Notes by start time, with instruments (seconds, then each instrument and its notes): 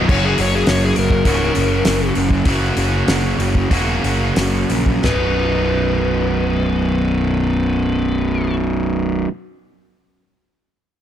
0.08 picked electric bass F#1, distorted electric guitar F#2 C#3 F#3 A#3 C#4 F#4, electric slide guitar C#5, kick, crash
0.25 electric slide guitar G#4
0.38 picked electric bass F#1, electric slide guitar C#5, open hi-hat
0.55 electric slide guitar G#4
0.67 picked electric bass F#1, electric slide guitar C#5, snare, open hi-hat
0.85 electric slide guitar G#4
0.96 picked electric bass F#1, electric slide guitar A#4, open hi-hat
1.11 kick
1.25 picked electric bass C#1, distorted electric guitar F#2 C#3 F#3 A#3 C#4 F#4, kick, open hi-hat
1.55 picked electric bass F#1, open hi-hat
1.85 picked electric bass F#1, snare, open hi-hat
2.15 picked electric bass F#1, open hi-hat
2.30 kick
2.45 picked electric bass F#1, distorted electric guitar F#2 C#3 F#3 A#3 C#4 F#4, kick, open hi-hat
2.77 picked electric bass F#1, open hi-hat
3.08 picked electric bass F#1, snare, open hi-hat
3.39 picked electric bass F#1, open hi-hat
3.55 kick
3.70 picked electric bass E1, distorted electric guitar F#2 C#3 F#3 A#3 C#4 F#4, kick, open hi-hat
4.04 picked electric bass F#1, open hi-hat
4.36 picked electric bass F#1, snare, open hi-hat
4.70 picked electric bass A#1, open hi-hat
4.86 kick
5.02 picked electric bass B0, distorted electric guitar B1 F#2 B2 F#3, electric slide guitar B4, snare, floor tom
5.07 distorted electric guitar D#4